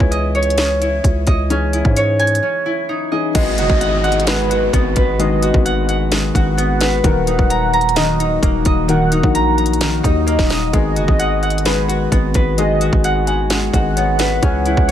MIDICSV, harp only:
0, 0, Header, 1, 2, 480
1, 0, Start_track
1, 0, Key_signature, 5, "minor"
1, 0, Tempo, 461538
1, 1563, Time_signature, 4, 2, 24, 8
1, 15511, End_track
2, 0, Start_track
2, 0, Title_t, "Harp"
2, 0, Program_c, 0, 46
2, 0, Note_on_c, 0, 59, 83
2, 0, Note_on_c, 0, 61, 98
2, 0, Note_on_c, 0, 64, 88
2, 0, Note_on_c, 0, 66, 81
2, 0, Note_on_c, 0, 71, 91
2, 0, Note_on_c, 0, 78, 92
2, 118, Note_on_c, 0, 75, 99
2, 120, Note_off_c, 0, 78, 0
2, 363, Note_on_c, 0, 73, 101
2, 604, Note_off_c, 0, 61, 0
2, 608, Note_on_c, 0, 61, 84
2, 846, Note_off_c, 0, 64, 0
2, 850, Note_on_c, 0, 64, 85
2, 1319, Note_off_c, 0, 75, 0
2, 1323, Note_on_c, 0, 75, 91
2, 1460, Note_off_c, 0, 66, 0
2, 1526, Note_off_c, 0, 71, 0
2, 1559, Note_off_c, 0, 61, 0
2, 1564, Note_on_c, 0, 61, 97
2, 1797, Note_off_c, 0, 64, 0
2, 1801, Note_on_c, 0, 64, 81
2, 2042, Note_off_c, 0, 73, 0
2, 2046, Note_on_c, 0, 73, 94
2, 2281, Note_on_c, 0, 80, 93
2, 2403, Note_off_c, 0, 59, 0
2, 2519, Note_off_c, 0, 61, 0
2, 2524, Note_on_c, 0, 61, 80
2, 2760, Note_off_c, 0, 64, 0
2, 2764, Note_on_c, 0, 64, 80
2, 2826, Note_off_c, 0, 75, 0
2, 3005, Note_on_c, 0, 63, 85
2, 3242, Note_on_c, 0, 75, 88
2, 3488, Note_on_c, 0, 56, 91
2, 3729, Note_on_c, 0, 66, 86
2, 3841, Note_off_c, 0, 80, 0
2, 3958, Note_on_c, 0, 78, 93
2, 4035, Note_off_c, 0, 73, 0
2, 4194, Note_off_c, 0, 78, 0
2, 4198, Note_on_c, 0, 78, 93
2, 4426, Note_off_c, 0, 56, 0
2, 4438, Note_on_c, 0, 56, 90
2, 4679, Note_off_c, 0, 66, 0
2, 4683, Note_on_c, 0, 66, 81
2, 4919, Note_on_c, 0, 59, 94
2, 5097, Note_off_c, 0, 75, 0
2, 5165, Note_on_c, 0, 71, 94
2, 5391, Note_off_c, 0, 56, 0
2, 5403, Note_on_c, 0, 56, 99
2, 5480, Note_off_c, 0, 64, 0
2, 5537, Note_off_c, 0, 61, 0
2, 5638, Note_off_c, 0, 66, 0
2, 5642, Note_on_c, 0, 66, 84
2, 5817, Note_off_c, 0, 63, 0
2, 5870, Note_off_c, 0, 78, 0
2, 5880, Note_on_c, 0, 78, 99
2, 6118, Note_off_c, 0, 78, 0
2, 6122, Note_on_c, 0, 78, 91
2, 6351, Note_off_c, 0, 56, 0
2, 6363, Note_on_c, 0, 56, 87
2, 6600, Note_off_c, 0, 66, 0
2, 6604, Note_on_c, 0, 66, 80
2, 6833, Note_off_c, 0, 59, 0
2, 6837, Note_on_c, 0, 59, 89
2, 7079, Note_off_c, 0, 71, 0
2, 7083, Note_on_c, 0, 71, 88
2, 7318, Note_on_c, 0, 51, 97
2, 7376, Note_off_c, 0, 56, 0
2, 7567, Note_on_c, 0, 63, 75
2, 7794, Note_off_c, 0, 78, 0
2, 7799, Note_on_c, 0, 82, 100
2, 7861, Note_off_c, 0, 59, 0
2, 7861, Note_off_c, 0, 71, 0
2, 8040, Note_off_c, 0, 82, 0
2, 8044, Note_on_c, 0, 82, 96
2, 8271, Note_off_c, 0, 51, 0
2, 8284, Note_on_c, 0, 51, 91
2, 8522, Note_off_c, 0, 63, 0
2, 8526, Note_on_c, 0, 63, 79
2, 8762, Note_on_c, 0, 58, 82
2, 9006, Note_on_c, 0, 75, 86
2, 9138, Note_off_c, 0, 66, 0
2, 9226, Note_off_c, 0, 51, 0
2, 9238, Note_on_c, 0, 51, 94
2, 9484, Note_off_c, 0, 63, 0
2, 9489, Note_on_c, 0, 63, 82
2, 9500, Note_off_c, 0, 82, 0
2, 9720, Note_on_c, 0, 82, 104
2, 9955, Note_off_c, 0, 82, 0
2, 9959, Note_on_c, 0, 82, 91
2, 10192, Note_off_c, 0, 51, 0
2, 10204, Note_on_c, 0, 51, 93
2, 10431, Note_off_c, 0, 63, 0
2, 10435, Note_on_c, 0, 63, 79
2, 10672, Note_off_c, 0, 58, 0
2, 10676, Note_on_c, 0, 58, 93
2, 10861, Note_off_c, 0, 75, 0
2, 10931, Note_on_c, 0, 75, 91
2, 11161, Note_on_c, 0, 56, 98
2, 11215, Note_off_c, 0, 51, 0
2, 11401, Note_on_c, 0, 66, 82
2, 11414, Note_off_c, 0, 82, 0
2, 11640, Note_on_c, 0, 78, 104
2, 11882, Note_off_c, 0, 78, 0
2, 11886, Note_on_c, 0, 78, 92
2, 12114, Note_off_c, 0, 56, 0
2, 12126, Note_on_c, 0, 56, 85
2, 12353, Note_off_c, 0, 66, 0
2, 12358, Note_on_c, 0, 66, 79
2, 12603, Note_on_c, 0, 59, 86
2, 12665, Note_off_c, 0, 58, 0
2, 12786, Note_off_c, 0, 75, 0
2, 12849, Note_on_c, 0, 71, 86
2, 13074, Note_off_c, 0, 56, 0
2, 13086, Note_on_c, 0, 56, 92
2, 13247, Note_off_c, 0, 63, 0
2, 13321, Note_off_c, 0, 66, 0
2, 13326, Note_on_c, 0, 66, 94
2, 13558, Note_off_c, 0, 78, 0
2, 13567, Note_on_c, 0, 78, 100
2, 13805, Note_off_c, 0, 78, 0
2, 13809, Note_on_c, 0, 78, 98
2, 14030, Note_off_c, 0, 56, 0
2, 14042, Note_on_c, 0, 56, 94
2, 14283, Note_off_c, 0, 66, 0
2, 14287, Note_on_c, 0, 66, 79
2, 14530, Note_off_c, 0, 59, 0
2, 14534, Note_on_c, 0, 59, 81
2, 14751, Note_off_c, 0, 71, 0
2, 14755, Note_on_c, 0, 71, 92
2, 15006, Note_on_c, 0, 61, 99
2, 15056, Note_off_c, 0, 56, 0
2, 15248, Note_on_c, 0, 64, 86
2, 15479, Note_on_c, 0, 73, 100
2, 15481, Note_off_c, 0, 78, 0
2, 15511, Note_off_c, 0, 59, 0
2, 15511, Note_off_c, 0, 61, 0
2, 15511, Note_off_c, 0, 64, 0
2, 15511, Note_off_c, 0, 66, 0
2, 15511, Note_off_c, 0, 71, 0
2, 15511, Note_off_c, 0, 73, 0
2, 15511, End_track
0, 0, End_of_file